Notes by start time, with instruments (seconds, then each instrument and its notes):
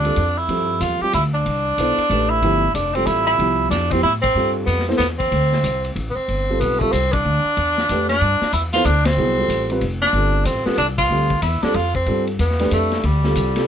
Already playing: upright bass D2, tenor saxophone D4
0.05 grand piano G3 C4 F4 A4, ride
0.16 upright bass F2, ride
0.38 tenor saxophone E4
0.48 upright bass G2, grand piano F3 G3 C4 A4, ride
0.80 upright bass E2, tenor saxophone F4, hi-hat pedal, ride
1.01 grand piano G3 C4 F4 G4, tenor saxophone G4, muted upright bass stroke
1.13 upright bass D2, tenor saxophone E4, hi-hat pedal, ride
1.34 tenor saxophone D4
1.46 upright bass C2, ride
1.78 upright bass B1, grand piano B3 E4 A4 C5, hi-hat pedal, ride
1.98 muted upright bass stroke, ride
2.10 upright bass A1, grand piano A3 D4 G4 B4, ride
2.30 tenor saxophone E4
2.42 upright bass G1, grand piano F3 B3 E4 G4, ride
2.74 upright bass F1, tenor saxophone D4, hi-hat pedal, ride
2.95 grand piano G3 C4 F4 A4, tenor saxophone C4, ride
3.06 upright bass A1, tenor saxophone E4, hi-hat pedal, ride
3.27 tenor saxophone E4, ride
3.39 upright bass C2, grand piano F3 B3 E4 G4, ride
3.70 upright bass F2, tenor saxophone D4, snare, hi-hat pedal, ride
3.91 grand piano F3 B3 E4 G4, tenor saxophone C4, kick, ride
4.03 upright bass A2, tenor saxophone E4
4.22 tenor saxophone C4, kick, ride
4.35 upright bass G2, grand piano G3 C4 F4 A4
4.66 upright bass F2, tenor saxophone B3, hi-hat pedal, ride
4.79 snare
4.88 grand piano B3 E4 A4 C5, snare
4.98 upright bass E2, tenor saxophone B3, snare, hi-hat pedal, ride
5.19 tenor saxophone C4, kick, ride
5.31 upright bass D2, ride
5.52 snare
5.64 upright bass C2, hi-hat pedal, ride
5.84 ride
5.96 upright bass A1, ride
6.10 tenor saxophone B3
6.16 tenor saxophone C4, muted upright bass stroke
6.28 upright bass G1, ride
6.50 grand piano G3 C4 F4 A4
6.60 upright bass B1, tenor saxophone B3, hi-hat pedal, ride
6.80 grand piano G3 C4 F4 A4, tenor saxophone A3, kick
6.93 upright bass C2, tenor saxophone C4, hi-hat pedal, ride
7.13 tenor saxophone D4, kick, ride
7.25 upright bass D2
7.45 muted upright bass stroke
7.57 upright bass E2, ride
7.78 snare
7.89 upright bass F2, grand piano A3 D4 G4 B4, hi-hat pedal, ride
8.09 tenor saxophone D4, snare, ride
8.21 upright bass G2, ride
8.41 muted upright bass stroke, snare
8.53 upright bass E2, tenor saxophone E4, hi-hat pedal, ride
8.73 grand piano B3 E4 A4 C5, tenor saxophone F4, snare, ride
8.85 upright bass D2, tenor saxophone D4, hi-hat pedal, ride
9.05 tenor saxophone C4, snare, ride
9.17 upright bass C2, grand piano F#3 B3 E4 G#4
9.38 grand piano G3 C4 F4 A4
9.48 upright bass A1, hi-hat pedal, ride
9.69 grand piano G3 C4 F4 B4, ride
9.81 upright bass F1, ride
10.02 tenor saxophone D4, snare
10.13 upright bass G1, grand piano G3 C4 F4 A4, ride
10.45 upright bass A1, tenor saxophone C4, hi-hat pedal, ride
10.66 grand piano G3 C4 F4 A4, tenor saxophone B3, muted upright bass stroke, snare
10.77 upright bass C2, tenor saxophone D4, hi-hat pedal, ride
10.98 tenor saxophone F4, kick, ride
11.09 upright bass D2, grand piano G3 C4 F4 A4
11.30 kick
11.42 upright bass E2, tenor saxophone E4, hi-hat pedal, ride
11.62 grand piano G3 C4 F4 A4, tenor saxophone D4, muted upright bass stroke, snare, ride
11.74 upright bass F2, tenor saxophone F4, ride
11.95 tenor saxophone C4, kick
12.06 upright bass G2, grand piano G3 C4 F4 A4, ride
12.27 ride
12.39 upright bass E2, tenor saxophone B3, hi-hat pedal, ride
12.50 snare
12.59 grand piano A3 D4 G4 B4, snare, ride
12.71 upright bass F2, tenor saxophone A3, hi-hat pedal, ride
12.92 snare, ride
13.03 upright bass D2, tenor saxophone G3, ride
13.24 grand piano G3 C4 F4 A4, snare
13.35 upright bass C2, hi-hat pedal, ride
13.56 grand piano G3 C4 F4 A4, snare, ride